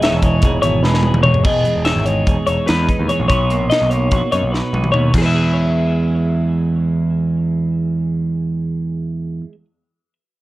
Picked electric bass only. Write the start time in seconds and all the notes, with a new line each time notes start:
Already playing: E1
0.12 E1
0.43 E1
0.62 G#1
0.83 E1
1.14 E1
1.45 E1
1.76 E1
1.96 G#1
2.27 E1
2.48 E1
2.69 E2
2.99 D#2
3.20 A#1
3.30 B1
3.61 A#1
3.82 B1
4.12 A#1
4.33 F#2
4.43 B1
4.73 B1
4.94 D#2
5.14 E2